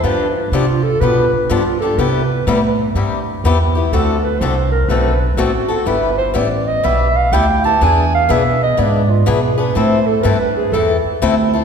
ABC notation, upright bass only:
X:1
M:4/4
L:1/8
Q:"Swing" 1/4=123
K:Gmix
V:1 name="Upright bass" clef=bass
G,,2 C,2 B,, z G,,2 | C,2 A,,2 G,,2 E,,2 | D,,2 C,,2 B,,,2 A,,, z | G,,,2 A,,,2 B,,,2 D,,2 |
E,,2 B,,2 ^G,,2 B,,2 | A,,2 G,,2 E,, z D,,2 |]